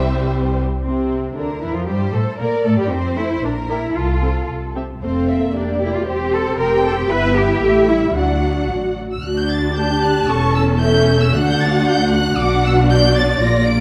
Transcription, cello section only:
0.00 0.60 C2 medium
0.82 1.31 C4 medium
1.35 1.61 D4 soft
1.61 1.74 E4 medium
1.75 1.87 F4 medium
1.86 2.12 G4 medium
2.13 2.39 A4 medium
2.39 2.65 A#4 medium
2.65 2.79 A4 medium
2.79 2.91 G4 medium
2.92 3.18 C4 medium
3.17 3.43 E4 medium
3.44 3.52 D4 medium
3.70 3.96 E4 medium
3.96 4.49 F4 medium
5.02 5.51 C4 medium
5.55 5.81 D4 medium
5.81 5.94 E4 medium
5.95 6.08 F4 medium
6.07 6.33 G4 medium
6.33 6.59 A4 medium
6.59 6.84 A#4 medium
6.85 6.98 A4 medium
6.98 7.11 G4 medium
7.10 7.36 B4 loud
7.36 7.89 G4 loud
7.89 8.16 E4 medium
8.16 8.69 D4 medium
9.24 10.25 D2 medium
10.30 11.32 E2 medium
11.35 12.39 D2 medium
12.39 13.40 B2 medium
13.42 13.80 A#2 medium

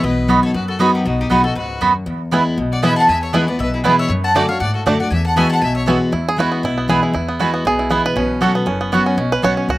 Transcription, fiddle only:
0.04 0.41 B4 medium
0.44 0.55 A4 medium
0.55 0.68 F#4 medium
0.69 0.80 F#4 medium
0.81 0.93 D#4 medium
0.94 1.05 D#4 medium
1.06 1.19 D#4 medium
1.20 1.30 D#4 medium
1.32 1.44 D#4 medium
1.45 1.56 F#4 medium
1.57 1.93 F#4 medium
2.72 2.83 D5 medium
2.84 2.96 E5 medium
2.97 3.08 F#5 medium
3.08 3.21 E5 medium
3.23 3.33 C#5 medium
3.35 3.47 G#4 medium
3.49 3.59 B4 medium
3.61 3.73 B4 medium
3.74 3.84 E4 medium
3.85 3.98 G#4 medium
3.99 4.10 C#5 medium
4.24 4.35 F#5 medium
4.36 4.49 D5 medium
4.49 4.60 C#5 medium
4.61 4.74 D5 medium
4.75 4.86 F#4 medium
4.87 5.00 A4 medium
5.01 5.11 D5 medium
5.13 5.25 E5 medium
5.26 5.37 F#5 medium
5.37 5.50 G#5 medium
5.51 5.62 F#5 medium
5.63 5.75 E5 medium
5.76 5.87 C#5 medium

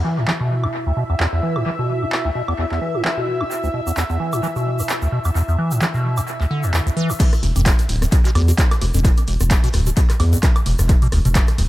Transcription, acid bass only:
0.05 0.19 E3 medium
0.18 0.26 A2 loud
0.28 0.32 E3 medium
0.40 0.65 B2 medium
0.63 0.67 E2 medium
0.87 0.92 D2 medium
0.97 1.04 B2 medium
1.10 1.15 E2 medium
1.20 1.27 E2 medium
1.33 1.41 E2 medium
1.43 1.57 E3 medium
1.56 1.64 A2 loud
1.66 1.70 E3 loud
1.79 2.04 B2 medium
2.02 2.05 E2 loud
2.25 2.31 D2 medium
2.35 2.42 B2 medium
2.48 2.54 E2 medium
2.59 2.66 E2 medium
2.72 2.80 E2 medium
2.82 2.96 E3 medium
2.95 3.03 A2 loud
3.05 3.09 E3 loud
3.18 3.42 B2 medium
3.41 3.44 E2 loud
3.64 3.69 D2 medium
3.74 3.81 B2 medium
3.87 3.92 E2 medium
3.97 4.04 E2 medium
4.10 4.18 E2 medium
4.20 4.34 E3 medium
4.33 4.41 A2 loud
4.43 4.47 E3 loud
4.56 4.81 B2 medium
4.79 4.82 E2 loud
5.02 5.08 D2 medium
5.12 5.19 B2 medium
5.25 5.31 E2 medium
5.35 5.42 E2 medium
5.48 5.57 E2 medium
5.58 5.73 E3 medium
5.71 5.80 A2 loud
5.81 5.86 E3 medium
5.94 6.19 B2 medium
6.17 6.21 E2 loud
6.41 6.46 D2 medium
6.51 6.65 D3 medium
6.64 6.72 E2 medium
6.74 6.81 E2 medium
6.87 6.90 D2 loud
6.97 7.11 E3 loud
7.10 7.13 E2 medium
7.20 7.24 E2 medium
7.43 7.47 D2 medium
7.56 7.61 F2 loud
7.66 7.70 A2 medium
7.89 7.96 E1 medium
8.02 8.05 E2 medium
8.25 8.31 B2 medium
8.35 8.42 D2 medium
8.48 8.52 B2 medium
8.58 8.63 E2 medium
8.82 8.86 D2 medium
8.94 9.00 F2 loud
9.05 9.09 A2 medium
9.28 9.35 E1 medium
9.41 9.44 E2 medium
9.64 9.69 B2 medium
9.74 9.81 D2 medium
9.87 9.90 B2 medium
9.97 10.01 E2 medium
10.20 10.24 D2 medium
10.33 10.39 F2 loud
10.43 10.47 A2 medium
10.66 10.73 E1 medium
10.79 10.82 E2 medium
11.02 11.08 B2 medium
11.12 11.19 D2 medium
11.25 11.29 B2 medium
11.35 11.40 E2 medium
11.58 11.63 D2 medium

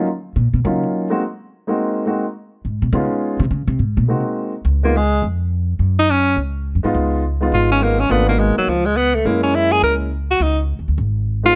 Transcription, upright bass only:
0.36 0.53 A#2 medium
0.54 0.64 B2 medium
0.65 0.82 C#3 medium
2.65 2.81 G#2 medium
2.82 2.92 B2 medium
2.93 3.04 C#3 medium
3.40 3.50 C3 loud
3.51 3.67 C#3 medium
3.68 3.78 C3 medium
3.79 3.97 G#2 medium
3.97 4.08 A#2 medium
4.08 4.19 C3 medium
4.65 5.19 C#2 medium
5.22 5.77 F2 medium
5.79 6.34 F#2 medium
6.37 6.73 C#2 medium
6.75 6.84 F#2 medium
6.84 6.94 G#2 medium
6.95 7.49 C#2 medium
7.52 8.07 G#1 medium
8.10 8.53 G#1 medium
8.67 9.22 C#2 medium
9.25 9.80 F#2 medium
9.82 10.37 C#2 medium
10.40 10.76 C#2 medium
10.79 10.87 D#2 medium
10.88 10.97 D2 medium
10.98 11.53 G#1 medium

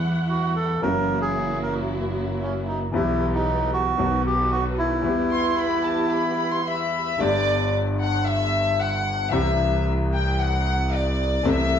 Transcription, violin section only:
5.31 5.56 C6 medium
5.57 5.84 B5 medium
5.84 6.11 A5 medium
6.10 6.36 B5 medium
6.38 6.50 B5 medium
6.51 6.65 C6 medium
6.65 7.15 E5 medium
6.65 7.20 B5 medium
7.18 7.72 D5 medium
8.02 8.26 F#5 medium
8.27 8.80 E5 medium
8.79 9.33 F#5 medium
9.32 9.85 E5 medium
10.13 10.37 G5 medium
10.39 10.92 F#5 medium
10.92 11.45 D5 medium
11.46 11.79 E5 loud

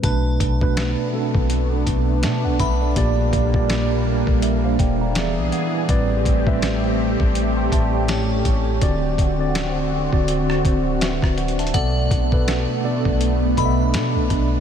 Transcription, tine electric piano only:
0.03 0.55 B2 loud
0.03 0.55 A3 medium
0.03 0.55 D4 medium
0.03 0.56 B4 loud
0.61 1.08 B2 medium
0.61 1.09 A3 medium
0.61 1.09 D4 medium
0.61 1.10 B4 loud
1.13 1.80 B2 medium
1.13 1.81 A3 medium
1.13 1.21 C4 medium
1.13 1.81 A4 loud
1.21 1.84 D4 medium
2.23 2.44 E5 medium
2.23 2.43 A5 medium
2.45 2.59 B4 medium
2.45 2.59 F#5 medium
2.60 2.80 B4 medium
2.60 2.80 E5 medium
2.81 3.16 A4 medium
2.81 2.97 D5 medium
2.96 3.48 A#2 loud
2.96 3.48 A#3 loud
2.96 3.48 G4 loud
2.96 3.49 D5 loud
3.54 4.19 A#2 medium
3.54 4.19 A#3 medium
3.54 4.19 G4 medium
3.54 4.07 D5 loud
4.28 4.42 A4 medium
4.28 4.42 D5 medium
4.43 4.63 A#4 medium
4.43 4.63 E5 medium
4.64 4.79 C5 medium
4.64 4.79 F5 medium
4.80 5.00 D5 medium
4.80 5.00 G5 medium
5.01 5.36 F5 soft
5.01 5.36 A#5 medium
5.16 5.83 E3 medium
5.16 5.83 B3 medium
5.16 5.84 G#4 medium
5.16 5.84 D5 loud
5.16 5.50 E5 medium
5.53 5.87 F#5 medium
5.88 6.40 A2 loud
5.88 6.40 G3 loud
5.88 6.41 C4 medium
5.88 6.41 B4 loud
5.88 6.41 D5 loud
6.46 6.94 A2 medium
6.46 6.94 G3 medium
6.46 6.94 C4 medium
6.46 6.95 B4 medium
6.46 6.95 E5 loud
7.57 7.72 G5 medium
7.57 7.71 C6 medium
7.72 7.93 E5 medium
7.72 7.92 A5 medium
7.94 8.29 D5 medium
7.94 8.28 G5 medium
8.08 8.75 A2 medium
8.08 8.76 A3 medium
8.08 8.76 G4 medium
8.08 8.76 C#5 loud
8.81 9.33 D3 loud
8.81 9.33 C4 medium
8.81 9.34 F#4 medium
8.81 9.34 D5 loud
9.39 10.04 D3 medium
9.39 10.04 C4 medium
9.39 10.05 F#4 medium
9.39 10.05 D5 loud
10.12 10.60 D3 medium
10.12 10.60 C4 medium
10.12 10.60 F#4 medium
10.12 10.61 D5 medium
10.64 11.65 D3 medium
10.64 11.66 C4 medium
10.64 11.66 F#4 medium
10.64 11.02 C5 medium
11.01 11.36 B4 medium
11.01 11.36 E5 medium
11.38 11.58 C5 medium
11.38 11.58 F#5 medium
11.59 11.94 E5 medium
11.59 11.94 A5 medium
11.74 12.26 B2 loud
11.74 12.26 B3 loud
11.74 12.26 A4 loud
11.74 12.27 D5 loud
12.32 12.79 B2 medium
12.32 12.80 B3 medium
12.32 12.80 A4 medium
12.32 12.80 B4 loud
12.83 13.51 B2 medium
12.83 13.51 B3 medium
12.83 13.51 A4 medium
12.83 13.52 D5 loud
13.57 14.58 B2 medium
13.57 14.58 B3 medium
13.57 14.58 A4 medium
13.57 13.66 D#5 medium
13.65 14.60 E5 medium

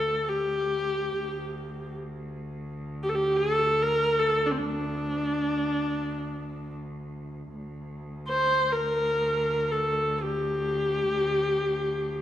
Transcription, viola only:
0.00 0.30 A4 medium
0.29 1.96 G4 medium
3.03 3.11 G4 medium
3.09 3.16 A4 medium
3.15 3.38 G4 medium
3.36 3.84 A4 medium
3.83 4.21 A#4 medium
4.19 4.48 A4 medium
4.46 4.53 D4 medium
4.51 4.60 C4 medium
4.58 6.75 D4 medium
8.28 8.73 C5 medium
8.72 9.73 A#4 medium
9.72 10.24 A4 medium
10.22 12.22 G4 medium

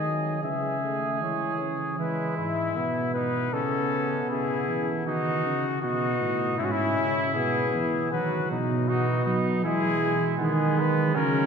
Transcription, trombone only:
0.05 0.42 F#3 medium
0.42 0.81 E3 medium
0.82 1.22 A3 medium
1.21 1.58 G#3 medium
1.59 1.98 C#4 medium
1.99 2.78 G#3 medium
2.76 5.66 B3 medium
5.83 6.58 B3 medium
6.60 7.34 C#4 medium
7.36 8.10 B3 loud
8.12 8.60 F#3 medium
8.88 9.60 B3 medium
9.64 10.01 G#3 medium
10.02 11.17 G#3 loud
11.15 11.46 F#3 medium

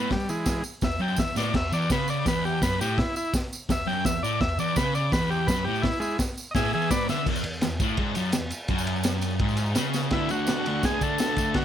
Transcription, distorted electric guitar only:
0.00 0.10 A2 loud
0.83 0.97 E2 medium
1.00 1.18 F#2 loud
1.19 1.33 E2 medium
1.36 1.54 A2 loud
1.53 1.68 E2 medium
1.72 1.90 E2 loud
1.90 2.26 C#3 loud
2.25 2.61 E2 loud
2.62 2.79 F#2 loud
2.80 2.97 A2 loud
3.69 3.84 E2 medium
3.86 4.04 F#2 loud
4.05 4.19 E2 medium
4.23 4.40 A2 loud
4.41 4.55 E2 medium
4.59 4.76 E2 loud
4.77 5.12 C#3 loud
5.12 5.47 E2 loud
5.48 5.65 F#2 loud
5.67 5.84 A2 loud
6.55 6.72 A2 loud
6.73 6.90 E2 loud
6.90 7.08 G#2 loud
7.09 7.26 D3 loud
7.26 7.43 E2 loud
7.44 7.58 E2 medium
7.62 7.76 E2 medium
7.81 7.98 A2 loud
7.98 8.15 G#2 loud
8.17 8.33 F#2 loud
8.35 8.48 E2 medium
8.70 9.40 F#2 loud
9.41 9.76 G#2 loud
9.77 10.11 C#3 loud
10.12 10.30 D3 loud
10.12 10.31 A3 medium
10.12 10.32 D4 loud
10.30 10.49 D3 medium
10.30 10.50 A3 medium
10.30 10.51 D4 loud
10.49 10.66 D3 medium
10.49 10.67 A3 loud
10.49 10.68 D4 loud
10.67 10.83 D3 medium
10.67 10.84 A3 medium
10.67 10.85 D4 medium
10.84 11.00 D3 medium
10.84 11.01 A3 loud
10.84 11.02 D4 loud
11.01 11.17 D3 loud
11.01 11.18 A3 medium
11.01 11.19 D4 loud
11.19 11.36 D3 medium
11.19 11.37 A3 loud
11.19 11.38 D4 loud
11.37 11.54 D3 medium
11.37 11.55 A3 medium
11.37 11.56 D4 loud
11.56 11.65 D3 medium
11.56 11.65 A3 loud
11.56 11.65 D4 loud

